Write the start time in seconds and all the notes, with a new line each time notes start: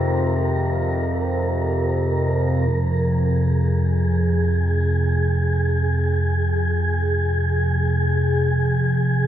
Already playing: F2 C3 C4 D#4 F4 G#4 A#4
2.69 F2 C3 G#4